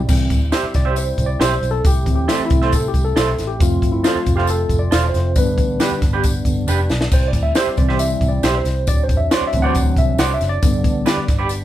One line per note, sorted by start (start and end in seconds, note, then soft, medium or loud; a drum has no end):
0.08 0.30 C2 loud
0.08 0.38 E3 medium
0.08 0.38 G3 soft
0.08 1.83 G3 medium
0.08 5.32 C4 soft
0.08 0.39 C4 medium
0.08 3.57 E4 medium
0.08 kick loud
0.08 crash loud
0.08 tambourine medium
0.30 0.49 D2 medium
0.30 kick loud
0.30 closed hi-hat medium
0.30 tambourine soft
0.52 0.63 G4 medium
0.52 0.63 C5 medium
0.52 0.63 E5 medium
0.52 snare loud
0.52 closed hi-hat medium
0.52 tambourine medium
0.63 muted fingered electric bass stroke soft
0.74 1.11 C2 medium
0.74 0.98 D5 medium
0.74 kick medium
0.74 snare soft
0.74 closed hi-hat medium
0.74 tambourine soft
0.85 0.94 G4 soft
0.85 0.94 C5 medium
0.85 0.94 E5 medium
0.96 1.28 C5 medium
0.96 closed hi-hat medium
0.96 tambourine medium
1.18 1.36 C2 medium
1.18 kick medium
1.18 closed hi-hat medium
1.18 tambourine medium
1.26 1.40 D5 medium
1.40 1.58 B1 medium
1.40 1.51 G4 medium
1.40 1.51 C5 medium
1.40 1.71 C5 loud
1.40 1.51 E5 loud
1.40 snare loud
1.40 closed hi-hat medium
1.40 tambourine loud
1.61 1.80 B1 medium
1.61 closed hi-hat medium
1.61 tambourine medium
1.71 1.86 A4 medium
1.84 2.03 C2 loud
1.84 5.32 A3 medium
1.84 2.14 G4 medium
1.84 kick loud
1.84 closed hi-hat medium
1.84 tambourine medium
2.05 2.24 D2 medium
2.05 2.69 E3 soft
2.05 2.69 A3 soft
2.05 2.70 C4 medium
2.05 kick medium
2.05 closed hi-hat medium
2.05 tambourine soft
2.15 2.45 G4 medium
2.28 2.39 A4 medium
2.28 2.39 C5 medium
2.28 2.39 E5 medium
2.28 snare medium
2.28 closed hi-hat medium
2.28 tambourine medium
2.39 muted fingered electric bass stroke soft
2.45 2.75 E4 medium
2.50 2.87 C2 medium
2.50 kick loud
2.50 closed hi-hat medium
2.50 tambourine soft
2.62 2.71 A4 soft
2.62 2.70 C5 medium
2.62 2.70 E5 medium
2.62 snare soft
2.72 2.88 A4 medium
2.72 kick medium
2.72 closed hi-hat medium
2.72 tambourine medium
2.88 3.03 G4 medium
2.94 3.12 C2 loud
2.94 kick medium
2.94 closed hi-hat medium
2.94 tambourine soft
3.05 3.49 A4 medium
3.16 3.35 B1 medium
3.16 3.27 A4 medium
3.16 3.27 C5 medium
3.16 3.27 E5 medium
3.16 snare loud
3.16 closed hi-hat medium
3.16 tambourine medium
3.38 3.57 A1 medium
3.38 snare soft
3.38 closed hi-hat medium
3.38 tambourine soft
3.47 3.62 G4 medium
3.59 3.79 F1 loud
3.59 5.32 F3 medium
3.59 5.32 A3 medium
3.59 5.32 C4 medium
3.59 5.35 F4 medium
3.59 3.92 F4 medium
3.59 kick loud
3.59 closed hi-hat medium
3.59 tambourine medium
3.82 4.01 G1 medium
3.82 kick medium
3.82 closed hi-hat medium
3.82 tambourine soft
3.92 4.06 E4 medium
4.04 4.33 F4 medium
4.04 4.15 A4 medium
4.04 4.15 C5 medium
4.04 4.15 F5 medium
4.04 snare loud
4.04 closed hi-hat medium
4.04 tambourine medium
4.15 muted fingered electric bass stroke soft
4.26 4.63 F1 loud
4.26 kick medium
4.26 closed hi-hat medium
4.26 tambourine soft
4.36 4.50 G4 medium
4.36 4.46 A4 medium
4.36 4.46 C5 medium
4.36 4.45 F5 medium
4.36 snare soft
4.47 4.80 A4 medium
4.47 closed hi-hat medium
4.47 tambourine medium
4.69 4.88 F1 medium
4.69 kick medium
4.69 closed hi-hat medium
4.69 tambourine medium
4.79 5.09 D5 medium
4.91 5.10 E1 loud
4.91 5.02 A4 medium
4.91 5.03 C5 medium
4.91 5.03 F5 medium
4.91 snare loud
4.91 closed hi-hat medium
4.91 tambourine loud
5.09 5.38 C5 medium
5.14 5.36 F1 medium
5.14 snare soft
5.14 closed hi-hat medium
5.14 tambourine medium
5.35 5.54 G1 medium
5.35 6.45 D3 medium
5.35 8.83 G3 medium
5.35 6.46 G3 medium
5.35 7.10 B3 medium
5.35 6.46 B3 medium
5.35 7.10 D4 medium
5.35 5.99 B4 medium
5.35 kick loud
5.35 closed hi-hat medium
5.35 tambourine medium
5.58 5.76 A1 medium
5.58 kick medium
5.58 closed hi-hat medium
5.58 tambourine soft
5.80 5.91 D4 medium
5.80 5.91 G4 loud
5.80 5.91 B4 medium
5.80 snare loud
5.80 closed hi-hat medium
5.80 tambourine medium
5.91 muted fingered electric bass stroke soft
6.02 6.38 G1 medium
6.02 kick loud
6.02 snare soft
6.02 closed hi-hat medium
6.02 tambourine soft
6.13 6.22 D4 soft
6.13 6.22 G4 medium
6.13 6.21 B4 medium
6.24 kick medium
6.24 closed hi-hat medium
6.24 tambourine medium
6.45 6.64 G1 medium
6.45 6.66 D3 soft
6.45 6.66 G3 soft
6.45 6.66 B3 soft
6.45 kick medium
6.45 closed hi-hat medium
6.45 tambourine medium
6.68 6.86 F1 medium
6.68 6.78 D4 medium
6.68 6.79 G4 medium
6.68 6.79 B4 medium
6.68 tambourine loud
6.89 7.08 B1 medium
6.89 snare medium
6.89 tambourine soft
7.01 snare medium
7.12 7.30 C2 medium
7.12 10.59 C4 medium
7.12 8.86 E4 medium
7.12 7.28 C5 medium
7.12 kick loud
7.12 tambourine medium
7.12 crash medium
7.28 7.42 D5 medium
7.33 7.52 D2 medium
7.33 kick medium
7.33 closed hi-hat medium
7.33 tambourine soft
7.43 7.57 E5 medium
7.55 7.66 G4 medium
7.55 7.66 C5 medium
7.55 7.79 C5 medium
7.55 7.66 E5 medium
7.55 snare loud
7.55 closed hi-hat medium
7.55 tambourine medium
7.67 muted fingered electric bass stroke soft
7.76 8.14 C2 medium
7.76 8.40 E3 medium
7.76 8.40 G3 soft
7.76 8.40 C4 medium
7.76 8.00 D5 medium
7.76 kick medium
7.76 closed hi-hat medium
7.76 tambourine soft
7.89 7.97 G4 soft
7.89 7.97 C5 medium
7.89 7.97 E5 medium
7.89 snare soft
7.99 8.30 E5 medium
7.99 closed hi-hat medium
7.99 tambourine loud
8.21 8.39 C2 loud
8.21 kick medium
8.21 closed hi-hat medium
8.21 tambourine soft
8.29 8.59 D5 medium
8.42 8.61 B1 medium
8.42 8.54 G4 medium
8.42 8.54 C5 medium
8.42 8.55 E5 loud
8.42 snare loud
8.42 closed hi-hat medium
8.42 tambourine loud
8.58 8.88 C5 medium
8.64 8.87 C2 medium
8.64 snare soft
8.64 closed hi-hat medium
8.64 tambourine soft
8.87 9.09 D2 loud
8.87 10.61 F#3 medium
8.87 11.64 D4 medium
8.87 9.03 D5 loud
8.87 kick loud
8.87 closed hi-hat medium
8.87 tambourine medium
9.03 9.18 C5 medium
9.09 9.27 E2 medium
9.09 kick loud
9.09 closed hi-hat medium
9.09 tambourine soft
9.17 9.31 E5 medium
9.31 9.42 F#4 medium
9.31 9.42 C5 medium
9.31 9.42 D5 medium
9.31 9.47 D5 medium
9.31 snare loud
9.31 closed hi-hat medium
9.31 tambourine medium
9.41 muted fingered electric bass stroke soft
9.48 9.62 E5 medium
9.53 9.71 D2 loud
9.53 10.17 E3 medium
9.53 10.17 F#3 medium
9.53 10.17 C4 medium
9.53 kick medium
9.53 closed hi-hat medium
9.53 tambourine soft
9.62 9.73 F#4 soft
9.62 9.73 C5 medium
9.62 9.72 D5 medium
9.62 9.99 F#5 loud
9.74 9.93 D2 loud
9.74 kick medium
9.74 closed hi-hat medium
9.74 tambourine medium
9.96 10.15 C2 loud
9.96 10.20 E5 medium
9.96 kick medium
9.96 closed hi-hat medium
9.96 tambourine soft
10.17 10.36 C2 loud
10.17 10.29 F#4 medium
10.17 10.30 C5 medium
10.17 10.30 D5 loud
10.17 10.26 F#5 loud
10.17 snare loud
10.17 closed hi-hat medium
10.17 tambourine loud
10.34 10.49 E5 medium
10.40 10.58 F#1 medium
10.40 snare soft
10.40 closed hi-hat medium
10.40 tambourine medium
10.49 11.54 D5 loud
10.62 10.81 G1 medium
10.62 11.25 D3 medium
10.62 11.25 G3 medium
10.62 11.64 G3 medium
10.62 11.64 B3 medium
10.62 11.26 B3 medium
10.62 kick loud
10.62 closed hi-hat loud
10.62 tambourine medium
10.84 11.02 A1 medium
10.84 kick medium
10.84 closed hi-hat medium
10.84 tambourine medium
11.06 11.17 G4 medium
11.06 11.17 B4 medium
11.06 11.17 D5 loud
11.06 snare loud
11.06 closed hi-hat loud
11.06 tambourine medium
11.17 muted fingered electric bass stroke soft
11.28 11.64 G1 medium
11.28 kick loud
11.28 snare soft
11.28 closed hi-hat medium
11.28 tambourine soft
11.39 11.48 G4 medium
11.39 11.47 B4 medium
11.39 11.47 D5 medium
11.49 closed hi-hat medium
11.49 tambourine medium